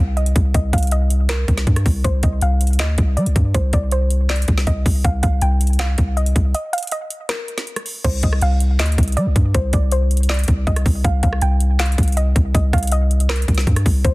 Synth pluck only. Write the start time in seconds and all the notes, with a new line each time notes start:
Already playing: F5
0.17 D#5
0.55 D#5
0.73 F5
0.92 D#5
1.29 A#4
2.04 C5
2.23 D#5
2.42 F5
2.80 D#5
3.17 D5
3.55 C5
3.73 D5
3.92 C5
4.30 D5
4.67 D#5
5.05 F5
5.23 F5
5.42 G5
5.79 F5
6.17 D#5
6.55 D#5
6.73 F5
6.92 D#5
7.29 A#4
8.04 C5
8.24 D#5
8.42 F5
8.80 D#5
9.17 D5
9.54 C5
9.73 D5
9.92 C5
10.29 D5
10.67 D#5
11.05 F5
11.23 F5
11.42 G5
11.79 F5
12.17 D#5
12.55 D#5
12.73 F5
12.92 D#5
13.29 A#4
14.04 C5